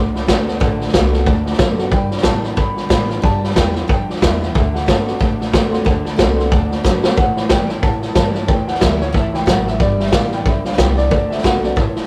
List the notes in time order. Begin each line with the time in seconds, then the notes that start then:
Already playing: C2 A2 D3 A3
0.14 D3 A3 D5 F#5 B5, snare
0.27 D2 D3 A3 B3 C4 F#4 D5 F#5 A5, kick, snare, hi-hat pedal
0.46 D3 B3 D5 F#5 A5, snare
0.60 A1 D3 A3 D5 F#5 A5, kick, snare
0.79 D3 A3 D5 F#5 A5, snare
0.88 snare
0.93 C2 D3 A3 B3 C4 F#4 D5 F#5 B5, kick, snare, hi-hat pedal
1.13 D3 B3 C4 F#4 D5 F#5 A5, snare
1.26 D2 A2 D3 A3 D5 F#5 A5, kick, snare
1.45 D3 A3 D5 F#5 A5, snare
1.53 snare
1.59 F#2 D3 A3 B3 C4 F#4 D5 A5 C6, kick, snare, hi-hat pedal
1.78 D3 B3 C4 F#4 D5 F#5 A5, snare
1.91 G2 D3 G3 D5 G5 B5, kick, snare
2.11 G2 D3 D5 G5 B5, snare
2.17 snare
2.23 G2 A2 E3 G3 B3 F4 D5 G5 A5 B5, kick, snare, hi-hat pedal
2.43 G2 E3 B3 F4 D5 G5 B5, snare
2.56 G2 B2 D3 D5 G5 B5, kick, snare
2.77 G2 D3 D5 G5 B5, snare
2.89 G2 A2 E3 G3 B3 F4 D5 A5 B5, kick, snare, hi-hat pedal
3.08 G2 E3 B3 F4 D5 G5 A5, snare
3.22 G2 D3 G3 D5 G5 A5 B5, kick, snare
3.42 G2 D3 D5 G5 B5, snare
3.50 snare
3.54 E2 G2 E3 G3 B3 F4 D5 G5 B5, kick, snare, hi-hat pedal
3.73 G2 E3 B3 F4 D5 G5 B5, snare
3.88 F2 G2 D3 D5 G5 A5, kick, snare
4.09 G2 D3 D5 G5 D6, snare
4.16 snare
4.21 E2 G2 E3 G3 B3 F4 D5 E5 G5 B5, kick, snare, hi-hat pedal
4.40 G2 E3 B3 F4 D5 G5 B5, snare
4.55 D2 D3 A3 D5 E5 F#5 A5, kick, snare
4.74 D3 A3 D5 F#5 A5, snare
4.86 G1 D3 A3 B3 C4 F#4 D5 F#5 A5, kick, snare, hi-hat pedal
5.05 D3 B3 C4 F#4 D5 F#5 A5, muted upright bass stroke, snare
5.20 A1 A2 D3 A3 D5 F#5 A5, kick, snare
5.39 D3 A3 D5 F#5 A5, snare
5.52 E2 D3 A3 B3 C4 F#4 D5 F#5 C6, kick, snare, hi-hat pedal
5.71 D3 B3 C4 F#4 D5 F#5 C6, snare
5.85 D2 D3 A3 D5 F#5 A5, kick, snare
6.04 D3 A3 D5 F#5 A5, snare
6.16 C2 D3 A3 C4 F#4 D5 F#5 A5, kick, snare, hi-hat pedal
6.21 B3
6.37 D3 B3 D5 F#5 C6, snare
6.51 D2 A2 D3 A3 D5 F#5 A5, kick, snare
6.70 D3 A3 D5 F#5 A5, snare
6.83 F#2 D3 A3 B3 C4 F#4 D5 F#5 A5, kick, snare, hi-hat pedal
7.02 D3 B3 C4 F#4 D5 F#5 A5, muted upright bass stroke, snare
7.16 A2 E3 C#5 E5 F#5 A5, kick, snare
7.36 A2 E3 C#5 E5 B5, snare
7.49 A2 B2 E3 F#3 G3 C#4 E4 C#5 E5 G5 A5, kick, snare, hi-hat pedal
7.69 A2 F#3 C#4 E4 C#5 E5 A5, snare
7.82 E2 A2 E3 C#5 E5 F#5 A5, kick, snare
8.02 A2 E3 C#5 E5 A5, snare
8.15 G2 A2 E3 F#3 G3 C#4 E4 C#5 E5 G5 A5, kick, snare, hi-hat pedal
8.33 A2 C#4 E4 C#5 E5 A5, snare
8.37 F#3
8.47 E2 A2 E3 C#5 E5 G5 A5, kick, snare
8.67 A2 E3 C#5 E5 F#5 A5, snare
8.74 snare
8.80 D2 A2 E3 F#3 G3 C#4 E4 C#5 E5 A5, kick, snare, hi-hat pedal
8.99 A2 F#3 C#4 E4 C#5 E5 F#5, snare
9.12 C#2 A2 E3 C#5 E5 A5, kick, snare
9.33 A2 E3 C#5 E5 G5 B5, snare
9.46 A1 A2 F#3 C#5 E5 F#5 A5, kick, snare, hi-hat pedal
9.66 A2 F#3 C#5 E5 F#5, snare
9.79 G1 G2 D3 G3 D5 G5 B5, kick, snare
9.98 G2 D3 D5 E5 G5 B5, snare
10.06 snare
10.12 A1 G2 E3 G3 B3 F4 D5 F5 D6, kick, snare, hi-hat pedal
10.31 G2 E3 B3 F4 D5 G5 B5, snare
10.45 B1 G2 D3 D5 E5 G5 B5, kick, snare
10.64 G2 D3 D5 F5 G5 B5, snare
10.72 snare
10.78 C2 G2 E3 G3 B3 F4 D5 G5 B5, kick, snare, hi-hat pedal
10.97 G2 E3 B3 F4 D5 G5 A5, snare
11.11 D2 D3 A3 D5 F#5 A5, kick, snare
11.30 D3 A3 D5 E5 F#5 A5, snare
11.38 snare
11.42 B1 D3 A3 B3 C4 F#4 D5 F#5 A5, kick, snare, hi-hat pedal
11.62 D3 B3 C4 F#4 D5 F#5 A5, snare
11.76 A1 A2 E3 C#5 E5 A5, kick, snare
11.95 A2 E3 C#5 E5 A5, muted upright bass stroke, snare
12.03 snare